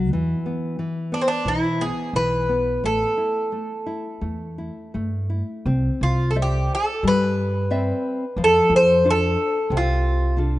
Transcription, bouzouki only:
1.14 D4
1.21 C4
1.28 D4
1.48 E4
1.81 G#4
2.16 B4
2.86 A4
6.03 F4
6.31 A4
6.42 G4
6.75 A4
7.08 B4
8.44 A4
8.76 C5
9.10 A4
9.77 F4

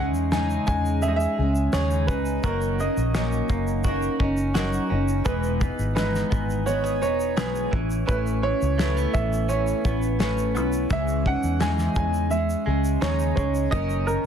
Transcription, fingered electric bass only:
Already playing: C#2
0.14 E2
0.68 E2
1.39 C#2
1.74 D#2
2.08 C#2
2.44 F#1
2.97 A#1
3.50 F#1
4.20 F#1
4.91 F#1
5.26 E1
5.79 G#1
6.32 G#1
7.03 E1
7.38 B1
7.73 A1
8.09 A1
8.62 C#2
9.14 A1
9.85 A1
10.56 B1
10.91 C#2
11.44 E2
11.96 E2
12.67 C#2
13.02 D#2
13.37 C#2
13.73 F#1

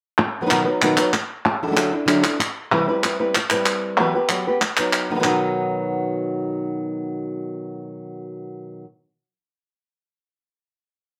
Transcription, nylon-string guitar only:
0.19 muted nylon-string guitar stroke
0.41 D#3 F#3 B3 D#4 B4
0.46 D#3 F#3 B3 D#4 B4
0.50 B2 D#3 F#3 B3 D#4 B4
0.65 F#3 B3 D#4 B4
0.82 B2 D#3 F#3 B3 D#4 B4
0.97 F#3 B3 D#4 B4
1.13 muted nylon-string guitar stroke
1.45 muted nylon-string guitar stroke
1.63 F#3 D4 E4 A4
1.67 F#3 D4 E4 A4
1.71 F#3 D4 E4 A4
1.76 D3 F#3 D4 E4 A4
1.92 D4 E4 A4
2.06 D3 F#3 D4 E4 A4
2.22 E4 A4
2.40 muted nylon-string guitar stroke
2.71 C3 E3 G3 C4 E4 B4
2.88 G3 C4 E4 B4
3.03 G3 C4 E4 B4
3.20 G3 C4 E4 B4
3.36 muted nylon-string guitar stroke
3.51 G3 C4 E4 B4
3.99 E3 F#3 B3 G4 B4
4.15 B3 G4 B4
4.29 F#3 B3 G4 B4
4.47 B3 G4 B4
4.61 muted nylon-string guitar stroke
4.78 F#3 B3 D#4 B4
5.10 D#3 F#3 B3 D#4 B4
5.14 D#3 F#3 B3 D#4 B4
5.19 D#3 F#3 B3 D#4 B4
5.24 B2 D#3 F#3 B3 D#4 B4

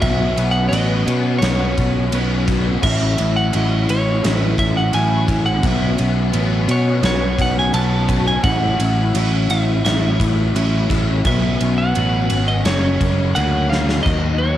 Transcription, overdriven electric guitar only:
0.01 B2 F#3 B3 C#4
0.36 F#3 B3 C#4
0.72 B2 F#3 B3 C#4
1.08 F#3 B3 C#4
2.13 B2 F#3 B3 C#4
2.46 F#3 B3 C#4
2.81 A2 E3 A3 C#4 E4
3.17 A3 C#4 E4
3.50 E3 A3 C#4 E4
3.86 A3 C#4 E4
4.94 E3 A3 C#4 E4
5.28 A3 C#4 E4
5.62 B2 F#3 B3 C#4
5.97 F#3 B3 C#4
6.33 B2 F#3 B3 C#4
6.68 F#3 B3 C#4
7.72 B2 F#3 B3 C#4
8.08 F#3 B3 C#4
8.43 A2 E3 A3 C#4 E4
8.81 A3 C#4 E4
9.17 E3 A3 C#4 E4
9.51 A3 C#4 E4
10.55 E3 A3 C#4 E4
10.90 A3 C#4 E4
11.25 B2 F#3 B3 C#4
11.60 F#3 B3 C#4
11.95 B2 F#3 B3 C#4
12.31 F#3 B3 C#4
12.67 F#2 C#3 F#3 A#3 C#4
13.36 C#3 F#3 A#3 C#4
13.72 F#3 A#3 C#4
14.06 D#3 F#3 A#3 D#4

